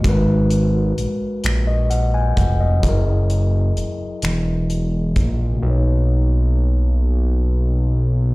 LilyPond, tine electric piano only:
\new Staff \with { instrumentName = "Tine electric piano" } { \time 6/8 \key b \major \tempo 4. = 43 << { r4. r16 dis''16 fis''16 gis''16 fis''16 dis''16~ | dis''16 r2 r8. | r2. | } \\ { <gis fis' ais' b'>2. | <fis e' gis' ais'>2. | <b, ais dis' cis''>2. | } >> }